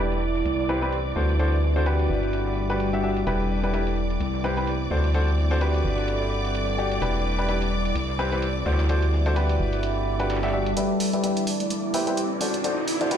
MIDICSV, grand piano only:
0, 0, Header, 1, 2, 480
1, 0, Start_track
1, 0, Key_signature, 1, "minor"
1, 0, Tempo, 468750
1, 1426, Time_signature, 4, 2, 24, 8
1, 13488, End_track
2, 0, Start_track
2, 0, Title_t, "Grand piano"
2, 0, Program_c, 0, 0
2, 0, Note_on_c, 0, 62, 68
2, 0, Note_on_c, 0, 64, 63
2, 0, Note_on_c, 0, 67, 66
2, 0, Note_on_c, 0, 71, 77
2, 208, Note_off_c, 0, 62, 0
2, 208, Note_off_c, 0, 64, 0
2, 208, Note_off_c, 0, 67, 0
2, 208, Note_off_c, 0, 71, 0
2, 707, Note_on_c, 0, 60, 90
2, 707, Note_on_c, 0, 64, 77
2, 707, Note_on_c, 0, 67, 79
2, 707, Note_on_c, 0, 71, 94
2, 822, Note_off_c, 0, 60, 0
2, 822, Note_off_c, 0, 64, 0
2, 822, Note_off_c, 0, 67, 0
2, 822, Note_off_c, 0, 71, 0
2, 842, Note_on_c, 0, 60, 81
2, 842, Note_on_c, 0, 64, 74
2, 842, Note_on_c, 0, 67, 76
2, 842, Note_on_c, 0, 71, 95
2, 965, Note_off_c, 0, 60, 0
2, 965, Note_off_c, 0, 67, 0
2, 965, Note_off_c, 0, 71, 0
2, 966, Note_off_c, 0, 64, 0
2, 1186, Note_on_c, 0, 62, 63
2, 1186, Note_on_c, 0, 66, 64
2, 1186, Note_on_c, 0, 69, 64
2, 1187, Note_on_c, 0, 72, 76
2, 1336, Note_off_c, 0, 62, 0
2, 1336, Note_off_c, 0, 66, 0
2, 1336, Note_off_c, 0, 69, 0
2, 1336, Note_off_c, 0, 72, 0
2, 1426, Note_on_c, 0, 62, 79
2, 1426, Note_on_c, 0, 66, 69
2, 1426, Note_on_c, 0, 69, 69
2, 1426, Note_on_c, 0, 72, 82
2, 1576, Note_off_c, 0, 62, 0
2, 1576, Note_off_c, 0, 66, 0
2, 1576, Note_off_c, 0, 69, 0
2, 1576, Note_off_c, 0, 72, 0
2, 1801, Note_on_c, 0, 66, 75
2, 1802, Note_on_c, 0, 62, 79
2, 1802, Note_on_c, 0, 69, 70
2, 1802, Note_on_c, 0, 72, 91
2, 1891, Note_off_c, 0, 62, 0
2, 1891, Note_off_c, 0, 66, 0
2, 1891, Note_off_c, 0, 69, 0
2, 1891, Note_off_c, 0, 72, 0
2, 1906, Note_on_c, 0, 71, 94
2, 1907, Note_on_c, 0, 62, 85
2, 1907, Note_on_c, 0, 66, 74
2, 1907, Note_on_c, 0, 67, 80
2, 2735, Note_off_c, 0, 62, 0
2, 2735, Note_off_c, 0, 66, 0
2, 2735, Note_off_c, 0, 67, 0
2, 2735, Note_off_c, 0, 71, 0
2, 2761, Note_on_c, 0, 66, 69
2, 2762, Note_on_c, 0, 62, 75
2, 2762, Note_on_c, 0, 67, 74
2, 2762, Note_on_c, 0, 71, 85
2, 2961, Note_off_c, 0, 62, 0
2, 2961, Note_off_c, 0, 66, 0
2, 2961, Note_off_c, 0, 67, 0
2, 2961, Note_off_c, 0, 71, 0
2, 3002, Note_on_c, 0, 62, 72
2, 3002, Note_on_c, 0, 67, 70
2, 3002, Note_on_c, 0, 76, 86
2, 3003, Note_on_c, 0, 66, 67
2, 3091, Note_off_c, 0, 62, 0
2, 3091, Note_off_c, 0, 66, 0
2, 3091, Note_off_c, 0, 67, 0
2, 3091, Note_off_c, 0, 76, 0
2, 3108, Note_on_c, 0, 62, 70
2, 3108, Note_on_c, 0, 66, 62
2, 3108, Note_on_c, 0, 67, 62
2, 3108, Note_on_c, 0, 76, 76
2, 3257, Note_off_c, 0, 62, 0
2, 3257, Note_off_c, 0, 66, 0
2, 3257, Note_off_c, 0, 67, 0
2, 3257, Note_off_c, 0, 76, 0
2, 3346, Note_on_c, 0, 62, 80
2, 3346, Note_on_c, 0, 67, 77
2, 3346, Note_on_c, 0, 71, 95
2, 3347, Note_on_c, 0, 64, 75
2, 3689, Note_off_c, 0, 62, 0
2, 3689, Note_off_c, 0, 64, 0
2, 3689, Note_off_c, 0, 67, 0
2, 3689, Note_off_c, 0, 71, 0
2, 3722, Note_on_c, 0, 62, 73
2, 3722, Note_on_c, 0, 64, 68
2, 3722, Note_on_c, 0, 67, 67
2, 3722, Note_on_c, 0, 71, 83
2, 3811, Note_off_c, 0, 62, 0
2, 3811, Note_off_c, 0, 64, 0
2, 3811, Note_off_c, 0, 67, 0
2, 3811, Note_off_c, 0, 71, 0
2, 3826, Note_on_c, 0, 62, 67
2, 3826, Note_on_c, 0, 64, 67
2, 3826, Note_on_c, 0, 67, 64
2, 3826, Note_on_c, 0, 71, 79
2, 4048, Note_off_c, 0, 62, 0
2, 4048, Note_off_c, 0, 64, 0
2, 4048, Note_off_c, 0, 67, 0
2, 4048, Note_off_c, 0, 71, 0
2, 4546, Note_on_c, 0, 60, 88
2, 4546, Note_on_c, 0, 64, 78
2, 4546, Note_on_c, 0, 67, 78
2, 4546, Note_on_c, 0, 71, 92
2, 4661, Note_off_c, 0, 64, 0
2, 4661, Note_off_c, 0, 67, 0
2, 4661, Note_off_c, 0, 71, 0
2, 4662, Note_off_c, 0, 60, 0
2, 4681, Note_on_c, 0, 60, 84
2, 4681, Note_on_c, 0, 64, 75
2, 4681, Note_on_c, 0, 67, 75
2, 4681, Note_on_c, 0, 71, 89
2, 4805, Note_off_c, 0, 60, 0
2, 4805, Note_off_c, 0, 64, 0
2, 4805, Note_off_c, 0, 67, 0
2, 4805, Note_off_c, 0, 71, 0
2, 5027, Note_on_c, 0, 62, 64
2, 5027, Note_on_c, 0, 66, 61
2, 5027, Note_on_c, 0, 69, 64
2, 5027, Note_on_c, 0, 72, 74
2, 5176, Note_off_c, 0, 66, 0
2, 5177, Note_off_c, 0, 62, 0
2, 5177, Note_off_c, 0, 69, 0
2, 5177, Note_off_c, 0, 72, 0
2, 5266, Note_on_c, 0, 62, 76
2, 5267, Note_on_c, 0, 66, 74
2, 5267, Note_on_c, 0, 69, 75
2, 5267, Note_on_c, 0, 72, 85
2, 5416, Note_off_c, 0, 62, 0
2, 5416, Note_off_c, 0, 66, 0
2, 5416, Note_off_c, 0, 69, 0
2, 5416, Note_off_c, 0, 72, 0
2, 5641, Note_on_c, 0, 62, 83
2, 5641, Note_on_c, 0, 66, 75
2, 5641, Note_on_c, 0, 69, 74
2, 5641, Note_on_c, 0, 72, 93
2, 5730, Note_off_c, 0, 62, 0
2, 5730, Note_off_c, 0, 66, 0
2, 5730, Note_off_c, 0, 69, 0
2, 5730, Note_off_c, 0, 72, 0
2, 5746, Note_on_c, 0, 62, 85
2, 5746, Note_on_c, 0, 66, 77
2, 5746, Note_on_c, 0, 67, 83
2, 5746, Note_on_c, 0, 71, 95
2, 6921, Note_off_c, 0, 62, 0
2, 6921, Note_off_c, 0, 66, 0
2, 6921, Note_off_c, 0, 67, 0
2, 6921, Note_off_c, 0, 71, 0
2, 6946, Note_on_c, 0, 62, 89
2, 6946, Note_on_c, 0, 66, 75
2, 6946, Note_on_c, 0, 67, 83
2, 6946, Note_on_c, 0, 74, 93
2, 7155, Note_off_c, 0, 62, 0
2, 7155, Note_off_c, 0, 66, 0
2, 7155, Note_off_c, 0, 67, 0
2, 7155, Note_off_c, 0, 74, 0
2, 7187, Note_on_c, 0, 62, 84
2, 7187, Note_on_c, 0, 64, 78
2, 7187, Note_on_c, 0, 67, 78
2, 7187, Note_on_c, 0, 71, 90
2, 7530, Note_off_c, 0, 62, 0
2, 7530, Note_off_c, 0, 64, 0
2, 7530, Note_off_c, 0, 67, 0
2, 7530, Note_off_c, 0, 71, 0
2, 7562, Note_on_c, 0, 62, 76
2, 7562, Note_on_c, 0, 64, 66
2, 7562, Note_on_c, 0, 67, 69
2, 7562, Note_on_c, 0, 71, 86
2, 7650, Note_off_c, 0, 64, 0
2, 7650, Note_off_c, 0, 71, 0
2, 7651, Note_off_c, 0, 62, 0
2, 7651, Note_off_c, 0, 67, 0
2, 7666, Note_on_c, 0, 62, 72
2, 7666, Note_on_c, 0, 64, 63
2, 7666, Note_on_c, 0, 67, 66
2, 7666, Note_on_c, 0, 71, 78
2, 7888, Note_off_c, 0, 62, 0
2, 7888, Note_off_c, 0, 64, 0
2, 7888, Note_off_c, 0, 67, 0
2, 7888, Note_off_c, 0, 71, 0
2, 8386, Note_on_c, 0, 60, 89
2, 8386, Note_on_c, 0, 67, 79
2, 8386, Note_on_c, 0, 71, 93
2, 8387, Note_on_c, 0, 64, 78
2, 8501, Note_off_c, 0, 60, 0
2, 8501, Note_off_c, 0, 71, 0
2, 8502, Note_off_c, 0, 64, 0
2, 8502, Note_off_c, 0, 67, 0
2, 8522, Note_on_c, 0, 60, 85
2, 8522, Note_on_c, 0, 64, 77
2, 8522, Note_on_c, 0, 67, 79
2, 8522, Note_on_c, 0, 71, 90
2, 8645, Note_off_c, 0, 60, 0
2, 8645, Note_off_c, 0, 64, 0
2, 8645, Note_off_c, 0, 67, 0
2, 8645, Note_off_c, 0, 71, 0
2, 8865, Note_on_c, 0, 66, 63
2, 8866, Note_on_c, 0, 62, 70
2, 8866, Note_on_c, 0, 69, 61
2, 8866, Note_on_c, 0, 72, 76
2, 9016, Note_off_c, 0, 62, 0
2, 9016, Note_off_c, 0, 66, 0
2, 9016, Note_off_c, 0, 69, 0
2, 9016, Note_off_c, 0, 72, 0
2, 9107, Note_on_c, 0, 62, 76
2, 9107, Note_on_c, 0, 66, 71
2, 9107, Note_on_c, 0, 69, 72
2, 9107, Note_on_c, 0, 72, 90
2, 9256, Note_off_c, 0, 62, 0
2, 9256, Note_off_c, 0, 69, 0
2, 9256, Note_off_c, 0, 72, 0
2, 9257, Note_off_c, 0, 66, 0
2, 9482, Note_on_c, 0, 62, 83
2, 9482, Note_on_c, 0, 66, 80
2, 9482, Note_on_c, 0, 69, 80
2, 9482, Note_on_c, 0, 72, 92
2, 9570, Note_off_c, 0, 62, 0
2, 9570, Note_off_c, 0, 66, 0
2, 9571, Note_off_c, 0, 69, 0
2, 9571, Note_off_c, 0, 72, 0
2, 9585, Note_on_c, 0, 62, 82
2, 9585, Note_on_c, 0, 66, 81
2, 9585, Note_on_c, 0, 67, 80
2, 9585, Note_on_c, 0, 71, 97
2, 10414, Note_off_c, 0, 62, 0
2, 10414, Note_off_c, 0, 66, 0
2, 10414, Note_off_c, 0, 67, 0
2, 10414, Note_off_c, 0, 71, 0
2, 10441, Note_on_c, 0, 62, 82
2, 10441, Note_on_c, 0, 66, 73
2, 10441, Note_on_c, 0, 67, 71
2, 10441, Note_on_c, 0, 71, 90
2, 10641, Note_off_c, 0, 62, 0
2, 10641, Note_off_c, 0, 66, 0
2, 10641, Note_off_c, 0, 67, 0
2, 10641, Note_off_c, 0, 71, 0
2, 10681, Note_on_c, 0, 62, 79
2, 10681, Note_on_c, 0, 66, 70
2, 10681, Note_on_c, 0, 67, 72
2, 10681, Note_on_c, 0, 76, 84
2, 10770, Note_off_c, 0, 62, 0
2, 10770, Note_off_c, 0, 66, 0
2, 10770, Note_off_c, 0, 67, 0
2, 10770, Note_off_c, 0, 76, 0
2, 10786, Note_on_c, 0, 62, 71
2, 10786, Note_on_c, 0, 66, 68
2, 10786, Note_on_c, 0, 67, 64
2, 10786, Note_on_c, 0, 76, 77
2, 10936, Note_off_c, 0, 62, 0
2, 10936, Note_off_c, 0, 66, 0
2, 10936, Note_off_c, 0, 67, 0
2, 10936, Note_off_c, 0, 76, 0
2, 11026, Note_on_c, 0, 67, 83
2, 11026, Note_on_c, 0, 71, 80
2, 11026, Note_on_c, 0, 74, 77
2, 11026, Note_on_c, 0, 76, 99
2, 11369, Note_off_c, 0, 67, 0
2, 11369, Note_off_c, 0, 71, 0
2, 11369, Note_off_c, 0, 74, 0
2, 11369, Note_off_c, 0, 76, 0
2, 11401, Note_on_c, 0, 67, 77
2, 11401, Note_on_c, 0, 71, 68
2, 11401, Note_on_c, 0, 74, 72
2, 11401, Note_on_c, 0, 76, 83
2, 11490, Note_off_c, 0, 71, 0
2, 11490, Note_off_c, 0, 76, 0
2, 11491, Note_off_c, 0, 67, 0
2, 11491, Note_off_c, 0, 74, 0
2, 11506, Note_on_c, 0, 67, 72
2, 11506, Note_on_c, 0, 71, 67
2, 11506, Note_on_c, 0, 74, 67
2, 11506, Note_on_c, 0, 76, 77
2, 11728, Note_off_c, 0, 67, 0
2, 11728, Note_off_c, 0, 71, 0
2, 11728, Note_off_c, 0, 74, 0
2, 11728, Note_off_c, 0, 76, 0
2, 12226, Note_on_c, 0, 67, 92
2, 12226, Note_on_c, 0, 72, 81
2, 12226, Note_on_c, 0, 76, 103
2, 12227, Note_on_c, 0, 71, 86
2, 12341, Note_off_c, 0, 67, 0
2, 12341, Note_off_c, 0, 72, 0
2, 12341, Note_off_c, 0, 76, 0
2, 12342, Note_off_c, 0, 71, 0
2, 12361, Note_on_c, 0, 71, 76
2, 12361, Note_on_c, 0, 72, 79
2, 12361, Note_on_c, 0, 76, 97
2, 12362, Note_on_c, 0, 67, 91
2, 12485, Note_off_c, 0, 67, 0
2, 12485, Note_off_c, 0, 71, 0
2, 12485, Note_off_c, 0, 72, 0
2, 12485, Note_off_c, 0, 76, 0
2, 12706, Note_on_c, 0, 66, 70
2, 12706, Note_on_c, 0, 69, 64
2, 12706, Note_on_c, 0, 72, 63
2, 12706, Note_on_c, 0, 74, 75
2, 12856, Note_off_c, 0, 66, 0
2, 12856, Note_off_c, 0, 69, 0
2, 12856, Note_off_c, 0, 72, 0
2, 12856, Note_off_c, 0, 74, 0
2, 12945, Note_on_c, 0, 72, 71
2, 12945, Note_on_c, 0, 74, 86
2, 12946, Note_on_c, 0, 66, 80
2, 12946, Note_on_c, 0, 69, 73
2, 13096, Note_off_c, 0, 66, 0
2, 13096, Note_off_c, 0, 69, 0
2, 13096, Note_off_c, 0, 72, 0
2, 13096, Note_off_c, 0, 74, 0
2, 13322, Note_on_c, 0, 66, 86
2, 13322, Note_on_c, 0, 69, 76
2, 13322, Note_on_c, 0, 72, 75
2, 13322, Note_on_c, 0, 74, 96
2, 13411, Note_off_c, 0, 66, 0
2, 13411, Note_off_c, 0, 69, 0
2, 13411, Note_off_c, 0, 72, 0
2, 13411, Note_off_c, 0, 74, 0
2, 13426, Note_on_c, 0, 66, 90
2, 13426, Note_on_c, 0, 67, 82
2, 13426, Note_on_c, 0, 71, 82
2, 13426, Note_on_c, 0, 74, 99
2, 13488, Note_off_c, 0, 66, 0
2, 13488, Note_off_c, 0, 67, 0
2, 13488, Note_off_c, 0, 71, 0
2, 13488, Note_off_c, 0, 74, 0
2, 13488, End_track
0, 0, End_of_file